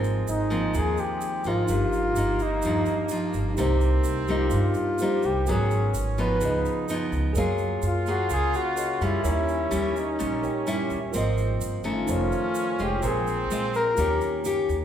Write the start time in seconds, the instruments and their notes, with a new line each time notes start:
Already playing: upright bass G#1, nylon-string guitar G#2 F3 A#3 C4, trumpet G#3, tine electric piano D#4 F4 A#4 C5
0.04 shaker
0.27 upright bass G#1, flugelhorn D#4, shaker
0.50 nylon-string guitar F3 A#3 C4, shaker
0.74 upright bass D#2, nylon-string guitar D#3, flugelhorn G#4, shaker
0.97 flugelhorn G4, shaker
1.21 shaker
1.44 upright bass G#1, nylon-string guitar F3 D#4, tine electric piano D#4 F4 A#4 C5, shaker
1.48 flugelhorn F4
1.66 upright bass G1, nylon-string guitar G2, trumpet A#3, tine electric piano D#4 F4, shaker
1.70 tine electric piano G4 A#4
1.93 shaker
2.16 upright bass G1, nylon-string guitar F3 D#4, shaker
2.39 flugelhorn D#4, shaker
2.62 upright bass D#2, nylon-string guitar G2 F3, shaker
2.66 nylon-string guitar D#4
2.86 shaker
3.09 nylon-string guitar F3 D#4, shaker
3.34 upright bass G1, shaker
3.55 upright bass C2, nylon-string guitar C3 G3 A#3, trumpet C4, tine electric piano D#4 G4 A#4, shaker
3.59 nylon-string guitar D#4, tine electric piano C5
3.81 shaker
4.04 upright bass C2, shaker
4.28 nylon-string guitar G3 A#3 D#4, shaker
4.32 flugelhorn F4
4.50 upright bass G2, nylon-string guitar G2, shaker
4.74 shaker
4.98 nylon-string guitar G3 A#3 D#4, tine electric piano D#4 G4 A#4 C5, shaker
5.23 upright bass C2, flugelhorn G4, shaker
5.45 upright bass G#1, nylon-string guitar G#2 F#3 B3 C#4, trumpet C#4, tine electric piano F#4 A#4 B4, flugelhorn G#4, shaker
5.51 tine electric piano C#5
5.71 shaker
5.94 upright bass G#1, shaker
6.18 nylon-string guitar F3 B3 D#4, flugelhorn B4, shaker
6.40 upright bass C#2, nylon-string guitar C#3, trumpet D#4, tine electric piano F4 G#4 B4, shaker
6.45 tine electric piano D#5
6.65 shaker
6.89 nylon-string guitar F3 B3 D#4, shaker
7.12 upright bass C#2, shaker
7.33 upright bass F#2, trumpet F4, tine electric piano G#4 A#4, shaker
7.37 nylon-string guitar F#3 A#3 F4 G#4, tine electric piano C#5 F5
7.58 shaker
7.82 upright bass F#2, flugelhorn F4, shaker
8.06 nylon-string guitar A#3 G#4, flugelhorn F#4, shaker
8.30 upright bass C#2, nylon-string guitar C#3, flugelhorn G#4, shaker
8.54 flugelhorn F#4, shaker
8.75 tine electric piano G#4 A#4 C#5 D#5, shaker
9.01 upright bass F#2, nylon-string guitar G3 C#4, flugelhorn E4, shaker
9.22 upright bass D#2, nylon-string guitar D#3, trumpet C#4, tine electric piano G4 A#4 C#5, shaker
9.28 tine electric piano E5
9.48 shaker
9.71 upright bass D#2, nylon-string guitar G3 C#4 E4, shaker
9.96 flugelhorn D#4, shaker
10.19 upright bass A#1, nylon-string guitar A#2 G3 C#4, shaker
10.42 tine electric piano G4 A#4 C#5 G5, shaker
10.67 nylon-string guitar G3 C#4 E4, shaker
10.90 upright bass D#2, shaker
11.12 upright bass G#1, nylon-string guitar F3 A#3 C4, trumpet C4, tine electric piano F4 A#4 C5, shaker
11.18 tine electric piano D#5
11.38 shaker
11.61 upright bass G1, shaker
11.84 nylon-string guitar D#3 A3 C#4, shaker
11.88 flugelhorn F4
12.06 upright bass F1, nylon-string guitar F2, trumpet C#4, tine electric piano D#4 A4 C5, shaker
12.12 tine electric piano C#5
12.32 shaker
12.55 shaker
12.79 upright bass F1, nylon-string guitar G#3 F4, shaker
12.83 flugelhorn G4
12.99 upright bass A#1, nylon-string guitar A#2, trumpet C4, tine electric piano F4 G#4, shaker
13.03 tine electric piano A#4 C5
13.08 flugelhorn G#4
13.27 shaker
13.50 upright bass A#1, nylon-string guitar G#3 F4, shaker
13.74 flugelhorn A#4, shaker
13.95 upright bass D#2, nylon-string guitar D#3 A#3 C#4, trumpet A#3, tine electric piano F4 G4 A#4, shaker
13.99 nylon-string guitar G4, tine electric piano C#5
14.21 shaker
14.45 nylon-string guitar A#3 C#4 G4, shaker
14.69 upright bass D#2, shaker